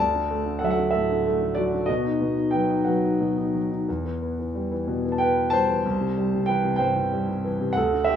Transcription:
Already playing: D5 A5
0.00 D2
0.14 D3
0.30 A3
0.46 D3
0.59 F#3 A4 F#5
0.64 E5
0.70 A4 F#5
0.78 D3
0.91 A4 E5
0.95 A2
1.10 D3
1.26 A3
1.41 D3
1.55 F#3 F#4 D5
1.74 D3
1.86 B2 F#4 D#5
2.05 D#4
2.21 B2
2.37 D#4
2.51 F#3 B4 G5
2.70 D#4
2.85 F#3 B4 F#5
3.04 D#4
3.21 B2
3.37 D#4
3.54 F#3
3.71 D#4
3.88 E2
4.05 E3
4.22 B3
4.39 E3
4.55 G3
4.72 E3
4.88 B2
5.05 E3
5.12 A5
5.18 B4 G5
5.37 E3
5.50 G3 C5 A5
5.69 E3
5.85 C2
6.01 C3
6.18 G3
6.34 C3
6.46 E3 B4 G5
6.65 C3
6.76 C5 G5
6.81 G2
6.97 C3
7.13 G3
7.29 C3
7.44 E3
7.60 C3
7.73 D2 A4 F#5
7.93 D3
8.04 G4 E5
8.09 A3

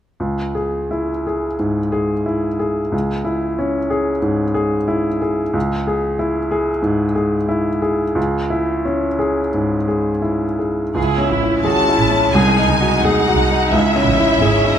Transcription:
0.20 C#2
0.55 G#4
0.91 E4
1.27 G#4
1.59 G#2
1.92 G#4
2.26 E4
2.59 G#4
2.92 C#2
3.25 E4
3.59 C#4
3.90 G#4
4.22 G#2
4.54 G#4
4.88 E4
5.22 G#4
5.53 C#2
5.87 G#4
6.19 E4
6.51 G#4
6.82 G#2
7.15 G#4
7.49 E4
7.82 G#4
8.15 C#2
8.50 E4
8.85 C#4
9.19 G#4
9.54 G#2
9.88 G#4
10.22 E4
10.59 G#4
10.94 C#2 G#3 E4 G#4
11.18 C#4
11.30 A1 E4
11.43 E4
11.62 G#1 C#4 F#4 G#4 A5
11.89 E4
11.97 A1 E4
12.11 C#4
12.32 C2 D#4 G#4 G#5
12.59 D#4
12.68 C#2 D#4
12.81 F#4
13.02 D#2 D#4 G#4 F#5
13.27 F#4
13.37 C2
13.51 D#4
13.71 C#2 G#3 E4 E5
13.96 C#4
14.06 A1
14.18 E4
14.41 G#1 C#4 G#4
14.65 E4
14.74 F#1 D#5

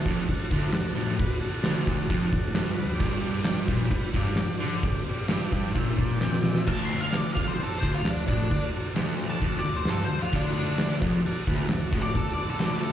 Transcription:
0.06 F2 D4 F#4 A4, kick, crash
0.28 D4 F#4 A4, muted distorted electric guitar stroke, kick, crash
0.51 D2 D4 F#4 A4, kick, crash
0.73 D2 D4 F#4 A4, snare, clap, crash
0.95 A2 D4 F#4 A4, crash
1.16 D2 D4 F#4 B4, kick, crash
1.39 D4 F#4 A4, crash
1.61 D2 D4 F#4 A4, snare, crash
1.65 clap
1.87 D4 F#4 A4, kick, crash
2.04 D4 F#4 A4
2.09 F2, kick, crash
2.29 D2 D4 F#4 A4, kick
2.33 crash
2.50 D4 F#4 A4
2.55 G2, snare, clap, crash
2.71 D4 F#4 B4
2.78 D2, crash
2.94 D4 G4 D5
3.00 G2, kick, crash
3.21 D4 G4 D5, crash
3.42 D4 G4 D5, snare, clap, crash
3.67 A#2 D4 G4 B4, kick, crash
3.88 D4 G4 B4, muted distorted electric guitar stroke, kick, crash
4.13 G2 D4 G4 D5, kick, crash
4.35 G2 D4 G4 D5, snare, clap, crash
4.59 D3 D4 G4 D5, crash
4.83 G2 D4 G4 D5, kick, crash
5.06 D4 G4 D5, crash
5.29 G2 D4 G4 D5, snare, clap, crash
5.52 D4 G4 D5, kick, crash
5.75 A#2 D4 G4 E5, kick, crash
5.98 D4 G4 D5 A5, kick, crash
6.21 D4 G4 D5 G5, snare, clap
6.33 snare
6.42 D4 G4 D5 E5, snare
6.55 snare
6.65 D2 F#4 A4 D5 A5, kick, crash
6.85 F#4 A4 E5 C6
6.90 crash
7.01 F5
7.08 F#4 A4 D5
7.13 snare, clap, crash
7.17 D5
7.33 F2 F#4 A4 D5 F5, kick, crash
7.48 C5
7.54 F#4 A4 D5
7.59 muted distorted electric guitar stroke, crash
7.63 A4
7.78 F#4 A4 C5 D5
7.82 D2, kick, clap, crash
7.95 F4
8.03 D2 F#4 A4 D5, snare, clap, crash
8.10 D4
8.27 A2 D4 F#4 A4 D5, kick, crash
8.49 D2 F#4 A4 D5, kick, crash
8.72 F#4 A4 D5, crash
8.95 D2 F#4 A4, snare, clap, crash
8.99 D5
9.19 F#4 A4 D5, crash
9.30 A5
9.41 F2 F#4 A4 D5, kick, crash
9.59 D5
9.63 D2 F#4 A4 D5, clap, crash
9.76 C5
9.85 G2 F#4 A4 D5, snare, clap, crash
9.90 A4
10.04 C5
10.09 D2 F#4 A4 D5, crash
10.22 F4
10.31 D2 F#4 A4 D5, kick, crash
10.36 D4
10.53 D4 F#4 D5
10.57 A4, crash
10.77 F#4 A4 D5, snare, clap, crash
11.02 F2 F#4 A4 D5, kick, crash
11.25 F#4 A4 D5, muted distorted electric guitar stroke, crash
11.47 D2 F#4 A4 B4, kick, crash
11.69 D2 F#4 D5, snare, clap, crash
11.73 A4
11.90 A2 F#4 A4 C#5, kick, crash
12.02 D5
12.13 D2 F#4 A4 D5, kick, crash
12.17 A4
12.34 D5
12.38 F#4 A4 D5, crash
12.50 A4
12.59 D2 F#4 A4 C#5, snare, clap, crash
12.66 D5
12.80 F#4 A4 D5, crash

